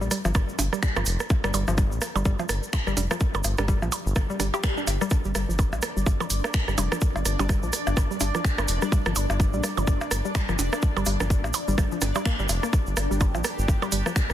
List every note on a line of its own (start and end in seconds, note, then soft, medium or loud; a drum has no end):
0.01 0.09 A#1 medium
0.01 0.08 G3 medium
0.01 shaker soft
0.11 0.20 G3 medium
0.11 cross-stick soft
0.11 open hi-hat medium
0.11 shaker medium
0.25 0.33 G1 loud
0.25 0.29 F3 medium
0.25 percussion blips soft
0.25 shaker soft
0.34 0.45 G1 loud
0.34 kick loud
0.34 cross-stick medium
0.34 percussion blips medium
0.34 shaker soft
0.49 shaker soft
0.59 0.69 G1 medium
0.59 open hi-hat medium
0.59 percussion blips soft
0.59 percussion blips medium
0.59 shaker medium
0.73 0.79 G3 medium
0.73 cross-stick soft
0.73 shaker soft
0.83 0.92 G3 medium
0.83 finger snap loud
0.83 kick loud
0.83 shaker soft
0.96 1.04 G1 loud
0.96 1.01 F3 medium
0.96 cross-stick medium
0.96 percussion blips medium
0.96 percussion blips soft
0.96 shaker soft
1.06 1.17 F1 loud
1.06 open hi-hat loud
1.06 shaker loud
1.20 cross-stick soft
1.20 shaker soft
1.30 kick loud
1.30 percussion blips soft
1.30 shaker soft
1.44 1.52 G1 medium
1.44 1.50 G3 medium
1.44 cross-stick medium
1.44 shaker soft
1.54 1.65 G1 loud
1.54 1.63 G3 medium
1.54 open hi-hat medium
1.54 percussion blips medium
1.54 shaker medium
1.68 1.93 G1 medium
1.68 1.72 F3 medium
1.68 percussion blips soft
1.68 shaker soft
1.78 kick loud
1.78 cross-stick soft
1.78 shaker medium
1.92 1.99 A#1 medium
1.92 shaker soft
2.01 cross-stick medium
2.01 open hi-hat medium
2.01 percussion blips soft
2.01 shaker medium
2.16 2.23 G1 loud
2.16 2.22 G3 medium
2.16 percussion blips medium
2.16 shaker soft
2.25 2.36 G1 loud
2.25 2.34 G3 medium
2.25 kick loud
2.25 cross-stick soft
2.25 shaker medium
2.39 2.44 F3 medium
2.39 percussion blips soft
2.39 shaker soft
2.49 2.60 G1 medium
2.49 cross-stick medium
2.49 open hi-hat loud
2.49 shaker loud
2.63 shaker soft
2.73 finger snap loud
2.73 kick loud
2.73 percussion blips medium
2.73 percussion blips soft
2.73 shaker medium
2.87 2.94 G1 loud
2.87 2.93 G3 medium
2.87 cross-stick soft
2.87 shaker soft
2.97 3.07 F1 loud
2.97 3.06 G3 medium
2.97 open hi-hat medium
2.97 percussion blips medium
2.97 shaker medium
3.11 3.15 F3 medium
3.11 cross-stick medium
3.11 percussion blips soft
3.11 shaker soft
3.20 kick loud
3.20 shaker medium
3.34 3.42 G1 medium
3.34 cross-stick soft
3.34 percussion blips medium
3.34 shaker soft
3.44 3.55 G1 loud
3.44 open hi-hat medium
3.44 percussion blips soft
3.44 shaker loud
3.58 3.84 G1 medium
3.58 3.65 G3 medium
3.58 cross-stick medium
3.58 percussion blips medium
3.58 shaker soft
3.68 3.77 G3 medium
3.68 kick loud
3.68 shaker soft
3.82 3.90 A#1 medium
3.82 3.86 F3 medium
3.82 percussion blips soft
3.82 shaker soft
3.92 open hi-hat medium
3.92 percussion blips medium
3.92 shaker medium
4.06 4.13 G1 loud
4.06 shaker soft
4.16 4.26 G1 loud
4.16 kick loud
4.16 cross-stick medium
4.16 swell medium
4.16 percussion blips soft
4.16 shaker medium
4.30 4.36 G3 medium
4.30 shaker soft
4.40 4.50 G1 medium
4.40 4.46 G3 medium
4.40 cross-stick soft
4.40 open hi-hat loud
4.40 percussion blips medium
4.40 shaker medium
4.54 4.58 G4 loud
4.54 percussion blips medium
4.54 percussion blips soft
4.54 shaker soft
4.63 finger snap loud
4.63 kick loud
4.63 cross-stick medium
4.63 shaker soft
4.77 4.80 D4 medium
4.77 shaker soft
4.87 4.98 G1 loud
4.87 open hi-hat medium
4.87 percussion blips soft
4.87 shaker medium
5.01 5.04 G3 loud
5.01 cross-stick soft
5.01 shaker soft
5.10 14.33 D4 medium
5.10 12.76 D5 medium
5.10 kick loud
5.10 cross-stick soft
5.10 shaker medium
5.25 5.33 G1 medium
5.25 5.31 G3 medium
5.25 shaker soft
5.35 5.45 G1 loud
5.35 5.44 G3 medium
5.35 cross-stick medium
5.35 open hi-hat medium
5.35 percussion blips soft
5.35 shaker medium
5.49 5.74 G1 medium
5.49 5.53 F3 medium
5.49 shaker soft
5.59 kick loud
5.59 cross-stick soft
5.59 percussion blips medium
5.59 shaker medium
5.73 5.80 A#1 medium
5.73 percussion blips soft
5.73 shaker soft
5.82 cross-stick medium
5.82 open hi-hat medium
5.82 shaker medium
5.97 6.04 G1 loud
5.97 6.03 G3 medium
5.97 shaker soft
6.06 6.17 G1 loud
6.06 6.15 G3 medium
6.06 kick loud
6.06 percussion blips soft
6.06 shaker medium
6.20 6.25 F3 medium
6.20 cross-stick soft
6.20 percussion blips medium
6.20 shaker soft
6.30 6.41 G1 medium
6.30 open hi-hat medium
6.30 shaker loud
6.44 cross-stick medium
6.44 percussion blips soft
6.44 shaker soft
6.54 finger snap loud
6.54 kick loud
6.54 shaker soft
6.68 6.75 G1 loud
6.68 6.74 G3 medium
6.68 cross-stick soft
6.68 shaker soft
6.78 6.88 F1 loud
6.78 6.87 G3 medium
6.78 open hi-hat loud
6.78 percussion blips medium
6.78 percussion blips soft
6.78 percussion blips medium
6.78 shaker medium
6.92 6.96 F3 medium
6.92 cross-stick medium
6.92 shaker soft
7.01 kick loud
7.01 shaker medium
7.16 7.23 G1 medium
7.16 percussion blips medium
7.16 shaker soft
7.25 7.36 G1 loud
7.25 cross-stick soft
7.25 open hi-hat loud
7.25 shaker loud
7.39 7.65 G1 medium
7.39 7.46 G3 medium
7.39 percussion blips medium
7.39 shaker soft
7.49 7.58 G3 medium
7.49 kick loud
7.49 cross-stick medium
7.49 percussion blips soft
7.49 shaker medium
7.63 7.71 A#1 medium
7.63 7.67 F3 medium
7.63 shaker soft
7.73 cross-stick soft
7.73 open hi-hat loud
7.73 shaker medium
7.87 7.94 G1 loud
7.87 percussion blips soft
7.87 shaker soft
7.97 8.07 G1 loud
7.97 kick loud
7.97 cross-stick medium
7.97 percussion blips medium
7.97 shaker medium
8.11 8.17 G3 medium
8.11 shaker soft
8.20 8.31 G1 medium
8.20 8.30 G3 medium
8.20 open hi-hat loud
8.20 percussion blips soft
8.20 percussion blips medium
8.20 shaker loud
8.35 8.39 F3 medium
8.35 cross-stick soft
8.35 shaker soft
8.45 finger snap loud
8.45 kick loud
8.45 shaker medium
8.58 8.66 G1 loud
8.58 cross-stick medium
8.58 percussion blips medium
8.58 shaker soft
8.68 8.79 F1 loud
8.68 open hi-hat loud
8.68 shaker loud
8.82 8.89 G3 medium
8.82 cross-stick soft
8.82 shaker soft
8.92 9.01 G3 medium
8.92 kick loud
8.92 percussion blips soft
8.92 shaker medium
9.06 9.13 G1 loud
9.06 9.10 F3 medium
9.06 cross-stick medium
9.06 shaker soft
9.16 9.26 G1 loud
9.16 open hi-hat loud
9.16 percussion blips medium
9.16 shaker loud
9.30 9.55 G1 medium
9.30 percussion blips soft
9.30 shaker soft
9.40 kick loud
9.40 cross-stick soft
9.40 shaker medium
9.53 9.61 A#1 medium
9.53 9.60 G3 medium
9.53 shaker soft
9.64 9.73 G3 medium
9.64 cross-stick medium
9.64 open hi-hat loud
9.64 percussion blips medium
9.64 shaker medium
9.77 9.85 G1 loud
9.77 9.82 F3 medium
9.77 percussion blips medium
9.77 shaker soft
9.87 9.98 G1 loud
9.87 kick loud
9.87 cross-stick soft
9.87 shaker medium
10.01 percussion blips soft
10.01 shaker soft
10.11 10.22 G1 medium
10.11 cross-stick medium
10.11 open hi-hat loud
10.11 shaker medium
10.25 10.31 G3 medium
10.25 shaker soft
10.35 10.44 G3 medium
10.35 finger snap loud
10.35 kick loud
10.35 percussion blips medium
10.35 percussion blips soft
10.35 shaker medium
10.49 10.56 G1 loud
10.49 10.53 F3 medium
10.49 cross-stick soft
10.49 shaker soft
10.59 10.69 F1 loud
10.59 open hi-hat loud
10.59 percussion blips medium
10.59 shaker loud
10.73 cross-stick medium
10.73 percussion blips soft
10.73 shaker soft
10.82 kick loud
10.82 shaker medium
10.97 11.04 G1 loud
10.97 11.03 G3 medium
10.97 cross-stick soft
10.97 percussion blips medium
10.97 shaker soft
11.06 11.17 G1 loud
11.06 11.15 G3 medium
11.06 open hi-hat loud
11.06 percussion blips soft
11.06 shaker loud
11.20 11.46 G1 medium
11.20 11.25 F3 medium
11.20 cross-stick medium
11.20 percussion blips medium
11.20 shaker soft
11.30 kick loud
11.30 shaker medium
11.44 11.52 A#1 medium
11.44 percussion blips soft
11.44 shaker soft
11.54 open hi-hat loud
11.54 percussion blips medium
11.54 shaker loud
11.68 11.75 G1 loud
11.68 11.74 G3 medium
11.68 shaker soft
11.78 11.88 G1 loud
11.78 11.87 G3 medium
11.78 kick loud
11.78 cross-stick medium
11.78 percussion blips soft
11.78 shaker medium
11.92 11.96 F3 medium
11.92 shaker soft
12.01 12.12 G1 medium
12.01 cross-stick soft
12.01 open hi-hat medium
12.01 percussion blips medium
12.01 shaker loud
12.15 12.18 G3 medium
12.15 percussion blips medium
12.15 percussion blips soft
12.15 shaker soft
12.25 12.31 A#3 loud
12.25 finger snap loud
12.25 kick loud
12.25 cross-stick medium
12.25 shaker medium
12.39 12.47 G1 loud
12.39 12.44 G3 medium
12.39 shaker soft
12.49 12.60 F1 loud
12.49 open hi-hat loud
12.49 percussion blips soft
12.49 shaker loud
12.63 12.67 A#3 medium
12.63 cross-stick soft
12.63 shaker soft
12.73 14.33 G4 medium
12.73 kick loud
12.73 cross-stick soft
12.73 shaker medium
12.87 12.94 G1 loud
12.87 shaker soft
12.97 13.07 G1 loud
12.97 cross-stick medium
12.97 open hi-hat medium
12.97 percussion blips soft
12.97 shaker loud
13.11 13.36 G1 medium
13.11 13.17 G3 medium
13.11 shaker soft
13.20 13.30 G3 medium
13.20 kick loud
13.20 cross-stick soft
13.20 percussion blips medium
13.20 shaker medium
13.35 13.42 A#1 medium
13.35 13.39 F3 medium
13.35 percussion blips soft
13.35 shaker soft
13.44 cross-stick medium
13.44 open hi-hat medium
13.44 shaker medium
13.58 13.66 G1 loud
13.58 shaker soft
13.68 13.79 G1 loud
13.68 kick loud
13.68 percussion blips soft
13.68 shaker medium
13.82 13.89 G3 medium
13.82 cross-stick soft
13.82 percussion blips medium
13.82 shaker soft
13.92 14.03 G1 medium
13.92 14.01 G3 medium
13.92 open hi-hat loud
13.92 shaker medium
14.06 14.10 F3 medium
14.06 cross-stick medium
14.06 percussion blips soft
14.06 shaker soft
14.16 finger snap loud
14.16 kick loud
14.16 shaker medium
14.30 14.33 G1 loud
14.30 cross-stick soft
14.30 shaker soft